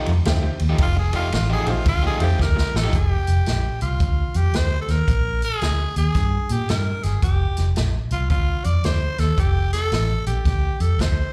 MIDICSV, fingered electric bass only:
0, 0, Header, 1, 2, 480
1, 0, Start_track
1, 0, Tempo, 536673
1, 711, Time_signature, 4, 2, 24, 8
1, 10132, End_track
2, 0, Start_track
2, 0, Title_t, "Fingered electric bass"
2, 0, Program_c, 0, 33
2, 66, Note_on_c, 0, 41, 84
2, 173, Note_off_c, 0, 41, 0
2, 230, Note_on_c, 0, 38, 102
2, 423, Note_off_c, 0, 38, 0
2, 542, Note_on_c, 0, 39, 96
2, 649, Note_off_c, 0, 39, 0
2, 705, Note_on_c, 0, 29, 106
2, 1007, Note_off_c, 0, 29, 0
2, 1190, Note_on_c, 0, 33, 96
2, 1382, Note_off_c, 0, 33, 0
2, 1492, Note_on_c, 0, 34, 102
2, 1602, Note_off_c, 0, 34, 0
2, 1664, Note_on_c, 0, 38, 91
2, 1857, Note_off_c, 0, 38, 0
2, 1970, Note_on_c, 0, 41, 86
2, 2080, Note_off_c, 0, 41, 0
2, 2143, Note_on_c, 0, 38, 100
2, 2336, Note_off_c, 0, 38, 0
2, 2453, Note_on_c, 0, 33, 84
2, 2561, Note_off_c, 0, 33, 0
2, 2622, Note_on_c, 0, 29, 93
2, 2815, Note_off_c, 0, 29, 0
2, 2934, Note_on_c, 0, 29, 87
2, 3042, Note_off_c, 0, 29, 0
2, 3110, Note_on_c, 0, 34, 77
2, 3301, Note_off_c, 0, 34, 0
2, 3416, Note_on_c, 0, 36, 80
2, 3523, Note_off_c, 0, 36, 0
2, 3581, Note_on_c, 0, 38, 86
2, 3775, Note_off_c, 0, 38, 0
2, 3892, Note_on_c, 0, 41, 80
2, 4000, Note_off_c, 0, 41, 0
2, 4063, Note_on_c, 0, 38, 83
2, 4256, Note_off_c, 0, 38, 0
2, 4369, Note_on_c, 0, 39, 77
2, 4478, Note_off_c, 0, 39, 0
2, 4544, Note_on_c, 0, 34, 99
2, 4845, Note_off_c, 0, 34, 0
2, 5027, Note_on_c, 0, 38, 80
2, 5219, Note_off_c, 0, 38, 0
2, 5334, Note_on_c, 0, 39, 79
2, 5442, Note_off_c, 0, 39, 0
2, 5502, Note_on_c, 0, 43, 80
2, 5696, Note_off_c, 0, 43, 0
2, 5817, Note_on_c, 0, 46, 82
2, 5924, Note_off_c, 0, 46, 0
2, 5992, Note_on_c, 0, 43, 86
2, 6183, Note_off_c, 0, 43, 0
2, 6299, Note_on_c, 0, 31, 82
2, 6406, Note_off_c, 0, 31, 0
2, 6465, Note_on_c, 0, 29, 100
2, 6658, Note_off_c, 0, 29, 0
2, 6781, Note_on_c, 0, 29, 90
2, 6887, Note_off_c, 0, 29, 0
2, 6952, Note_on_c, 0, 34, 79
2, 7143, Note_off_c, 0, 34, 0
2, 7256, Note_on_c, 0, 36, 83
2, 7364, Note_off_c, 0, 36, 0
2, 7427, Note_on_c, 0, 38, 85
2, 7620, Note_off_c, 0, 38, 0
2, 7738, Note_on_c, 0, 41, 75
2, 7846, Note_off_c, 0, 41, 0
2, 7912, Note_on_c, 0, 38, 84
2, 8104, Note_off_c, 0, 38, 0
2, 8218, Note_on_c, 0, 39, 82
2, 8326, Note_off_c, 0, 39, 0
2, 8389, Note_on_c, 0, 29, 102
2, 8691, Note_off_c, 0, 29, 0
2, 8873, Note_on_c, 0, 33, 90
2, 9065, Note_off_c, 0, 33, 0
2, 9183, Note_on_c, 0, 34, 84
2, 9290, Note_off_c, 0, 34, 0
2, 9353, Note_on_c, 0, 38, 83
2, 9546, Note_off_c, 0, 38, 0
2, 9663, Note_on_c, 0, 41, 79
2, 9770, Note_off_c, 0, 41, 0
2, 9834, Note_on_c, 0, 38, 85
2, 10026, Note_off_c, 0, 38, 0
2, 10132, End_track
0, 0, End_of_file